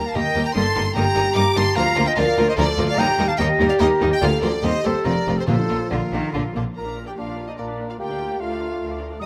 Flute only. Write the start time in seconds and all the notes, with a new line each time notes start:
0.06 F5
0.15 D#5
0.45 G5
0.55 A5
0.94 G5
1.36 A#5
1.55 A5
1.75 F5
2.08 D#5
2.18 D5
2.48 C5
2.58 A#4
2.89 D5
2.98 G5
3.28 F5
3.38 D#5
3.69 D5
3.79 A#4
4.11 D#5
4.20 D5
4.41 A#4
4.62 C5
4.84 A4
5.04 A#4
5.37 A4
5.48 A4
5.92 F4
6.77 A#5
7.09 G5
7.19 F5
7.49 D#5
7.60 D5
7.90 F5
7.99 G5
8.40 F5
9.19 D#6